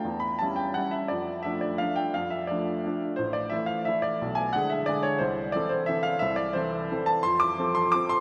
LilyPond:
<<
  \new Staff \with { instrumentName = "Upright piano" } { \time 3/4 \key a \phrygian \tempo 4 = 175 g''8 b''8 a''8 g''8 fis''8 e''8 | d''4 e''8 d''8 f''8 g''8 | f''8 e''8 d''4. r8 | c''8 d''8 e''8 f''8 e''8 d''8~ |
d''8 gis''8 fis''8 e''8 d''8 cis''8 | c''4 d''8 c''8 e''8 f''8 | e''8 d''8 c''4. a''8 | \key f \major c'''8 d'''4 c'''8 d'''8 c'''8 | }
  \new Staff \with { instrumentName = "Upright piano" } { \time 3/4 \key a \phrygian e,4 <g cis' e'>4 <g cis' e'>4 | f,4 <f a d'>4 <f a d'>4 | f,4 <f a d'>4 <f a d'>4 | a,,4 <e a e'>4 <e a e'>4 |
b,,4 <d gis gis'>4 <d gis gis'>4 | c,4 <e c' a'>4 <e c' a'>4 | c,4 <e c' a'>4 <e c' a'>4 | \key f \major f,4 <f c' a'>4 <f c' a'>4 | }
>>